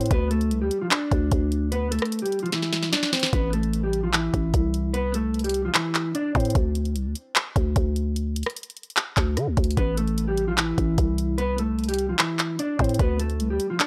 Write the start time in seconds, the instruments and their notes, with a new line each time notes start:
0.01 closed hi-hat
0.06 closed hi-hat
0.11 808-style bass D2, clean electric guitar B3 B4, kick, closed hi-hat
0.31 clean electric guitar A3 A4, closed hi-hat
0.41 closed hi-hat
0.51 808-style bass C2, closed hi-hat
0.61 808-style bass D2, clean electric guitar G3 G4
0.71 closed hi-hat
0.81 clean electric guitar F3 F4
0.91 clean electric guitar D4 D5, clap, closed hi-hat
1.11 808-style bass D2, kick, closed hi-hat
1.31 808-style bass D2, kick, closed hi-hat
1.52 closed hi-hat
1.72 clean electric guitar B3 B4, closed hi-hat
1.91 clean electric guitar A3 A4, closed hi-hat, open hi-hat
1.99 cross-stick, closed hi-hat
2.05 closed hi-hat
2.12 closed hi-hat
2.19 clean electric guitar G4, closed hi-hat
2.23 clean electric guitar G3, closed hi-hat
2.32 closed hi-hat
2.39 clean electric guitar F4, closed hi-hat
2.43 clean electric guitar F3, closed hi-hat
2.52 clean electric guitar E3 E4, snare, closed hi-hat
2.62 snare
2.73 snare, closed hi-hat
2.83 snare
2.92 clean electric guitar D4 D5, snare, closed hi-hat
3.03 snare
3.12 clean electric guitar C4 C5, snare, closed hi-hat
3.20 snare, closed hi-hat
3.26 closed hi-hat
3.33 808-style bass A1, clean electric guitar B3 B4, kick, closed hi-hat
3.53 clean electric guitar A3 A4, closed hi-hat
3.63 closed hi-hat
3.73 closed hi-hat
3.83 clean electric guitar G3 G4
3.93 closed hi-hat
4.04 clean electric guitar F3 F4
4.13 clean electric guitar E3 E4, clap, closed hi-hat
4.34 808-style bass A1, kick, closed hi-hat
4.54 808-style bass C2, kick, closed hi-hat
4.74 closed hi-hat
4.94 clean electric guitar B3 B4, closed hi-hat
5.14 clean electric guitar A3 A4, closed hi-hat
5.34 closed hi-hat
5.39 closed hi-hat
5.44 clean electric guitar G3 G4, closed hi-hat
5.49 closed hi-hat
5.54 closed hi-hat
5.65 clean electric guitar F3 F4
5.74 clean electric guitar E3 E4, clap, closed hi-hat
5.95 clap, closed hi-hat
6.15 clean electric guitar D4 D5, closed hi-hat
6.35 808-style bass A2, clean electric guitar C4 C5, kick, closed hi-hat
6.40 closed hi-hat
6.45 closed hi-hat
6.50 closed hi-hat
6.55 808-style bass D2, kick, closed hi-hat
6.75 closed hi-hat
6.85 closed hi-hat
6.95 808-style bass C2, closed hi-hat
7.05 808-style bass D2
7.15 closed hi-hat
7.36 clap, closed hi-hat
7.56 808-style bass D2, kick, closed hi-hat
7.76 808-style bass D2, kick, closed hi-hat
7.96 closed hi-hat
8.16 closed hi-hat
8.36 closed hi-hat, open hi-hat
8.43 cross-stick, closed hi-hat
8.50 closed hi-hat
8.56 closed hi-hat
8.63 closed hi-hat
8.70 closed hi-hat
8.77 closed hi-hat
8.83 closed hi-hat
8.90 closed hi-hat
8.97 clap, closed hi-hat
9.17 808-style bass D2, kick, clap, closed hi-hat
9.37 808-style bass D3, cross-stick, closed hi-hat
9.47 808-style bass D2
9.57 808-style bass D2, kick, closed hi-hat
9.64 closed hi-hat
9.71 closed hi-hat
9.77 808-style bass A1, clean electric guitar B3 B4, kick, closed hi-hat
9.97 clean electric guitar A3 A4, closed hi-hat
10.07 closed hi-hat
10.18 closed hi-hat
10.28 clean electric guitar G3 G4
10.38 closed hi-hat
10.48 clean electric guitar F3 F4
10.57 clean electric guitar E3 E4, clap, closed hi-hat
10.78 808-style bass A1, kick, closed hi-hat
10.98 808-style bass C2, kick, closed hi-hat
11.18 closed hi-hat
11.38 clean electric guitar B3 B4, closed hi-hat
11.58 clean electric guitar A3 A4, closed hi-hat
11.79 closed hi-hat
11.84 closed hi-hat
11.88 clean electric guitar G3 G4, closed hi-hat
11.94 closed hi-hat
11.99 closed hi-hat
12.09 clean electric guitar F3 F4
12.18 clean electric guitar E3 E4, clap, closed hi-hat
12.39 clap, closed hi-hat
12.59 clean electric guitar D4 D5, closed hi-hat
12.79 808-style bass A2, clean electric guitar C4 C5, kick, closed hi-hat
12.84 closed hi-hat
12.89 closed hi-hat
12.94 closed hi-hat
12.99 808-style bass D2, clean electric guitar B3 B4, kick, closed hi-hat
13.20 clean electric guitar A3 A4, closed hi-hat
13.30 closed hi-hat
13.40 808-style bass C2, closed hi-hat
13.50 808-style bass D2, clean electric guitar G3 G4
13.60 closed hi-hat
13.70 clean electric guitar F3 F4
13.79 clean electric guitar D4 D5, clap, closed hi-hat